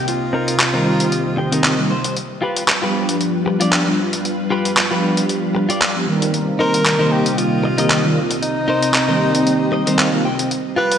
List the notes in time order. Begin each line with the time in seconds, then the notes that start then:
Already playing: C3 D#5
0.08 C4 F4, closed hi-hat
0.33 C4 D#4 A#4
0.48 closed hi-hat
0.60 clap, closed hi-hat
0.73 D#3 G3 A#3 C4 D#4 G4 A#4
1.00 closed hi-hat
1.12 closed hi-hat
1.37 G5, muted clean electric guitar stroke
1.52 D#3 G3 A#3 C4 D#4 G4 A#4, closed hi-hat
1.64 D#5, clap, closed hi-hat
1.78 D#3 G3 A#3 C4 F4
1.91 C5
2.04 muted clean electric guitar stroke, closed hi-hat
2.17 G3 F4 B4, closed hi-hat
2.42 F4 G4 B4
2.57 closed hi-hat
2.68 clap, closed hi-hat
2.82 F3 G3 B3 D4 F4 G4 B4
3.09 closed hi-hat
3.21 closed hi-hat
3.46 muted clean electric guitar stroke
3.60 F3 G3 B3 D4 F4 G4 D5, closed hi-hat
3.72 clap, closed hi-hat
3.87 F3 G3 B3 D4 F4
4.12 muted clean electric guitar stroke, closed hi-hat
4.25 closed hi-hat
4.50 F4 G4 B4
4.65 closed hi-hat
4.77 clap, closed hi-hat
4.90 F3 G3 B3 D4 F4 G4 B4
5.17 closed hi-hat
5.29 closed hi-hat
5.55 muted clean electric guitar stroke
5.69 F4 G4 D5, closed hi-hat
5.81 clap, closed hi-hat
5.95 F3 G3 B3 D4 G4
6.07 D#3 G3 A#3 C4 A#4
6.21 muted clean electric guitar stroke, closed hi-hat
6.34 C3 A#3 D#5, closed hi-hat
6.59 D#4 A#4 C5
6.74 closed hi-hat
6.85 clap, closed hi-hat
6.99 D#3 G3 A#3 C4 D#4 G4 A#4 C5
7.12 G4
7.26 closed hi-hat
7.38 F4, closed hi-hat
7.63 muted clean electric guitar stroke
7.78 D#3 G3 A#3 C4 D#4 G4 A#4 D#5, closed hi-hat
7.90 clap, closed hi-hat
8.04 D#3 G3 A#3 C4 F4
8.30 muted clean electric guitar stroke, closed hi-hat
8.43 C4 D#4, closed hi-hat
8.68 D#4 A#4 C5
8.83 closed hi-hat
8.94 clap, closed hi-hat
9.08 D#3 G3 A#3 C4 D#4 G4 A#4 C5
9.35 closed hi-hat
9.47 closed hi-hat
9.72 D#5, muted clean electric guitar stroke
9.86 D#3 G3 A#3 C4 D#4 G4 A#4 C5, closed hi-hat
9.99 F5, clap, closed hi-hat
10.13 D#3 G3 A#3 C4 F4
10.25 G5
10.38 muted clean electric guitar stroke, closed hi-hat
10.51 G3 F4 B4, closed hi-hat
10.76 F4 G4 B4
10.92 closed hi-hat